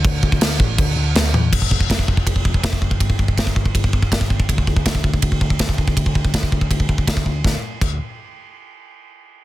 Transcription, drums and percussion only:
0.05 kick loud
0.05 crash medium
0.23 kick medium
0.32 kick loud
0.41 snare loud
0.41 crash medium
0.60 kick loud
0.78 kick loud
0.78 crash medium
1.15 snare loud
1.15 crash medium
1.34 high tom medium
1.53 kick medium
1.53 crash loud
1.62 kick medium
1.71 kick medium
1.80 kick medium
1.90 kick medium
1.90 snare loud
1.90 ride bell medium
1.99 kick medium
2.08 kick medium
2.17 kick medium
2.27 kick medium
2.27 ride bell medium
2.36 kick medium
2.45 kick medium
2.54 kick medium
2.63 kick medium
2.63 snare loud
2.63 ride bell medium
2.73 kick medium
2.82 kick medium
2.91 kick medium
3.00 kick medium
3.00 ride bell medium
3.10 kick medium
3.19 kick medium
3.28 kick medium
3.38 kick medium
3.38 snare loud
3.38 ride bell medium
3.47 kick medium
3.56 kick medium
3.65 kick medium
3.75 kick medium
3.75 ride bell medium
3.84 kick medium
3.93 kick medium
4.03 kick medium
4.12 kick medium
4.12 snare loud
4.12 ride bell medium
4.21 kick medium
4.30 kick medium
4.40 kick medium
4.49 kick medium
4.49 ride bell medium
4.58 kick medium
4.67 kick medium
4.76 kick medium
4.86 kick medium
4.86 snare loud
4.86 ride bell medium
4.95 kick medium
5.04 kick medium
5.14 kick medium
5.22 kick medium
5.22 ride bell medium
5.32 kick medium
5.41 kick medium
5.50 kick medium
5.59 kick medium
5.59 snare loud
5.59 ride bell medium
5.69 kick medium
5.78 kick medium
5.88 kick medium
5.97 kick medium
5.97 ride bell medium
6.06 kick medium
6.15 kick medium
6.25 kick medium
6.34 kick medium
6.34 snare medium
6.34 ride bell medium
6.43 kick medium
6.52 kick medium
6.61 kick medium
6.71 kick medium
6.71 ride bell medium
6.80 kick medium
6.89 kick medium
6.98 kick medium
7.07 kick medium
7.07 snare loud
7.07 ride bell medium
7.17 kick medium
7.26 kick soft
7.44 kick medium
7.44 snare medium
7.81 kick loud
7.81 crash medium

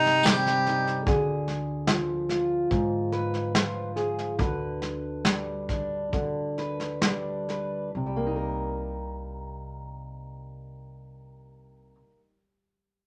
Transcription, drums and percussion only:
0.06 snare soft
0.23 snare medium
0.23 tambourine loud
0.46 snare soft
0.66 snare soft
0.87 snare soft
1.07 kick medium
1.07 snare soft
1.48 snare soft
1.87 snare medium
2.29 snare soft
2.71 kick medium
2.71 snare soft
3.12 snare soft
3.34 snare soft
3.55 snare medium
3.97 snare soft
4.19 snare soft
4.39 kick medium
4.39 snare soft
4.82 snare soft
5.25 snare medium
5.69 kick soft
5.69 snare soft
6.13 kick soft
6.13 snare soft
6.58 snare soft
6.80 snare soft
7.02 snare medium
7.49 snare soft

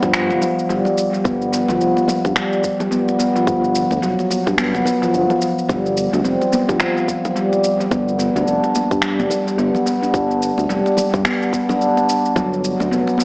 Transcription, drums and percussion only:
0.03 kick medium
0.03 shaker soft
0.14 finger snap medium
0.14 shaker soft
0.30 muted conga medium
0.30 high conga medium
0.30 shaker soft
0.42 low conga medium
0.42 shaker medium
0.59 shaker soft
0.70 shaker soft
0.85 low conga medium
0.85 shaker soft
0.98 shaker medium
1.14 shaker soft
1.25 kick loud
1.25 shaker soft
1.42 shaker soft
1.53 shaker medium
1.68 muted conga medium
1.68 shaker soft
1.81 shaker soft
1.97 muted conga soft
1.97 shaker soft
2.08 high conga medium
2.08 low conga medium
2.08 shaker medium
2.25 kick medium
2.25 shaker soft
2.36 finger snap medium
2.36 kick loud
2.36 shaker soft
2.53 shaker soft
2.64 kick medium
2.64 shaker medium
2.80 muted conga medium
2.80 low conga medium
2.80 shaker soft
2.92 shaker soft
3.08 muted conga soft
3.08 shaker soft
3.20 shaker medium
3.36 shaker soft
3.47 kick loud
3.47 shaker soft
3.64 shaker soft
3.75 shaker medium
3.91 muted conga soft
3.91 high conga medium
3.91 shaker soft
4.03 shaker soft
4.19 muted conga soft
4.19 shaker soft
4.30 high conga medium
4.30 shaker medium
4.47 kick loud
4.47 shaker soft
4.58 finger snap medium
4.58 shaker soft
4.74 muted conga medium
4.74 high conga medium
4.74 shaker soft
4.86 low conga medium
4.86 shaker medium
5.03 shaker soft
5.14 shaker soft
5.30 low conga medium
5.30 shaker soft
5.42 shaker medium
5.58 shaker soft
5.69 kick loud
5.69 shaker soft
5.86 shaker soft
5.97 shaker medium
6.13 muted conga medium
6.13 high conga medium
6.13 shaker soft
6.25 shaker soft
6.41 muted conga soft
6.41 shaker soft
6.53 high conga medium
6.53 low conga medium
6.53 shaker medium
6.69 kick loud
6.69 high conga medium
6.69 shaker soft
6.80 finger snap medium
6.80 kick loud
6.80 shaker soft
6.97 shaker soft
7.08 kick medium
7.08 shaker medium
7.25 muted conga medium
7.25 low conga medium
7.25 shaker soft
7.36 shaker soft
7.53 muted conga medium
7.53 shaker soft
7.64 shaker medium
7.80 muted conga soft
7.80 shaker soft
7.91 kick loud
7.91 shaker soft
8.08 shaker soft
8.20 shaker medium
8.36 muted conga soft
8.36 high conga soft
8.36 shaker soft
8.47 shaker soft
8.64 muted conga soft
8.64 shaker soft
8.75 high conga medium
8.75 shaker medium
8.91 kick loud
8.91 shaker soft
9.02 finger snap medium
9.02 shaker soft
9.20 muted conga medium
9.20 high conga medium
9.20 shaker soft
9.30 low conga medium
9.30 shaker medium
9.48 shaker soft
9.59 shaker soft
9.75 low conga medium
9.75 shaker soft
9.87 shaker medium
10.03 shaker soft
10.14 kick loud
10.14 shaker soft
10.31 shaker soft
10.42 shaker medium
10.58 muted conga medium
10.58 shaker soft
10.70 shaker soft
10.86 muted conga soft
10.86 shaker soft
10.97 high conga medium
10.97 low conga medium
10.97 shaker medium
11.14 kick loud
11.14 shaker soft
11.25 finger snap medium
11.25 kick loud
11.25 shaker soft
11.42 shaker soft
11.53 kick medium
11.53 shaker medium
11.69 muted conga medium
11.69 low conga medium
11.69 shaker soft
11.81 shaker soft
11.97 muted conga soft
11.97 shaker soft
12.09 shaker medium
12.26 shaker soft
12.36 kick loud
12.36 shaker soft
12.54 shaker soft
12.64 shaker medium
12.80 muted conga medium
12.80 high conga medium
12.80 shaker soft
12.93 shaker soft
13.07 muted conga soft
13.07 shaker soft
13.18 high conga medium
13.18 shaker medium

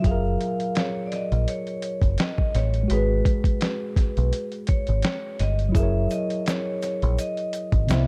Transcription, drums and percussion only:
0.04 kick loud
0.04 closed hi-hat medium
0.41 closed hi-hat medium
0.60 closed hi-hat medium
0.75 finger snap medium
0.75 snare medium
0.75 closed hi-hat medium
1.12 closed hi-hat medium
1.32 closed hi-hat soft
1.48 closed hi-hat medium
1.67 closed hi-hat soft
1.82 closed hi-hat medium
2.02 kick medium
2.02 closed hi-hat soft
2.18 finger snap medium
2.18 snare loud
2.18 closed hi-hat medium
2.38 kick medium
2.55 closed hi-hat medium
2.74 closed hi-hat soft
2.90 closed hi-hat medium
3.25 kick medium
3.25 closed hi-hat medium
3.44 kick medium
3.44 closed hi-hat medium
3.61 finger snap medium
3.61 snare loud
3.61 closed hi-hat medium
3.96 kick medium
3.96 closed hi-hat medium
4.17 closed hi-hat soft
4.33 closed hi-hat medium
4.52 closed hi-hat soft
4.67 kick medium
4.67 closed hi-hat medium
4.87 closed hi-hat soft
5.02 finger snap loud
5.02 snare loud
5.02 closed hi-hat medium
5.39 closed hi-hat medium
5.59 closed hi-hat soft
5.75 kick loud
5.75 closed hi-hat medium
5.75 shaker medium
6.10 closed hi-hat medium
6.10 shaker medium
6.30 closed hi-hat soft
6.46 finger snap medium
6.46 snare medium
6.46 closed hi-hat medium
6.46 shaker medium
6.82 closed hi-hat medium
6.82 shaker soft
7.02 closed hi-hat soft
7.19 closed hi-hat medium
7.19 shaker medium
7.37 closed hi-hat soft
7.53 closed hi-hat medium
7.53 shaker soft
7.72 kick medium
7.72 closed hi-hat soft
7.89 finger snap medium
7.89 snare loud
7.89 closed hi-hat medium
7.89 shaker medium

